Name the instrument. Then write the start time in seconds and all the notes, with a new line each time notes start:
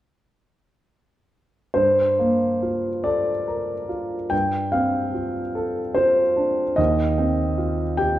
grand piano
1.74 G2 C5
2.19 A#3
2.62 F4
3.04 A4 D5
3.48 A#4
3.89 F4
4.30 G2 G5
4.72 C4 F5
5.14 F4
5.55 A4
5.95 F4 C5
6.36 D4
6.76 D#2 D#5
7.18 C4
7.58 F4
7.97 G4 G5